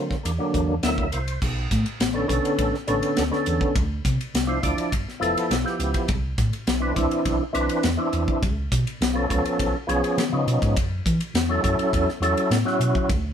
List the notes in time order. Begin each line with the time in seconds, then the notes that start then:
Already playing: D3 F#3 A#3 C4
0.11 kick, snare
0.23 E2 A#3 D4, hi-hat pedal, ride
0.38 D3 F#3 A#3 D4
0.54 E2, kick, hi-hat pedal, ride
0.83 D2 D3 F#3 A#3 E4 E5, snare, hi-hat pedal, ride
0.98 kick
1.12 C2 A#3 E4 C5, hi-hat pedal, ride
1.28 ride
1.42 B1, kick, crash
1.71 A2, kick, snare, hi-hat pedal, ride
1.86 ride
2.00 A1, snare, ride
2.14 D3 B3 C#4 A4
2.27 B1 D3 B3 C#4 A4, kick, hi-hat pedal, ride
2.45 ride
2.59 A1, kick, ride
2.74 snare
2.88 A1 D3 B3 C#4 A4, hi-hat pedal, ride
3.03 ride
3.17 D2, snare, ride
3.31 D3 B3 C#4 A4, snare
3.46 E2, hi-hat pedal, ride
3.61 muted fingered electric bass stroke, kick
3.75 D2, kick, ride
4.05 C3, kick, snare, hi-hat pedal, ride
4.21 ride
4.34 C2, snare, ride
4.47 F3 D4 E4 C5
4.62 D2 F3 D4 E4 D5, kick, hi-hat pedal, ride
4.78 muted fingered electric bass stroke, ride
4.92 G1, kick, ride
5.08 snare
5.20 F1 F3 B3 E4 A4, hi-hat pedal, ride
5.37 ride
5.50 B1, snare, ride
5.64 F3 B3 E4 G4, snare
5.79 C#2, hi-hat pedal, ride
5.94 muted fingered electric bass stroke, kick, ride
6.08 C2, kick, ride
6.38 A2, kick, snare, hi-hat pedal, ride
6.53 ride
6.67 B1, snare, ride
6.80 E3 C4 D4 B4
6.95 C2 E3 C4 D4 E4, kick, hi-hat pedal, ride
7.11 ride
7.25 B1, kick, ride
7.53 B1 E3 C4 D4 B4, hi-hat pedal, ride
7.69 ride
7.83 E2, snare, ride
7.97 E3 C4 D4 E4
8.13 E2, hi-hat pedal, ride
8.28 muted fingered electric bass stroke, kick
8.42 C#2, kick, ride
8.72 B2, kick, snare, hi-hat pedal, ride
8.87 ride
9.00 B1, snare, ride
9.14 F3 B3 C#4 A4
9.28 C#2 F3 B3 C#4 A4, kick, hi-hat pedal, ride
9.45 ride
9.59 B1, kick, ride
9.87 B1 F3 B3 C#4 G#4, hi-hat pedal, ride
10.04 ride
10.17 D#3, snare, ride
10.32 C#3 F3 B3 C#4 D#4
10.47 B2, hi-hat pedal, ride
10.62 G#2, kick, ride
10.77 F#2, kick, ride
11.06 E3, kick, hi-hat pedal, ride
11.21 ride
11.34 E2, snare, ride
11.49 F#3 C#4 E4 A4
11.62 F#2 F#3 C#4 E4 A4, kick, hi-hat pedal, ride
11.79 muted fingered electric bass stroke, ride
11.93 E2, kick, ride
12.09 snare
12.20 E2 F#3 C#4 E4 A4, hi-hat pedal, ride
12.37 ride
12.50 A2, snare, ride
12.65 F#3 C#4 E4 F#4, snare
12.80 B2, hi-hat pedal, ride
12.95 kick
13.09 D2, kick, ride